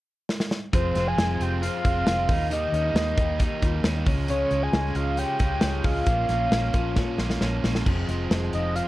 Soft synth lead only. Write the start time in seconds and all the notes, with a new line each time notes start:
0.74 C5
1.08 G#5
1.42 G5
1.62 F5
2.52 D#5
4.29 C#5
4.63 G#5
4.96 F5
5.18 G5
5.85 F5
8.54 D#5
8.76 F5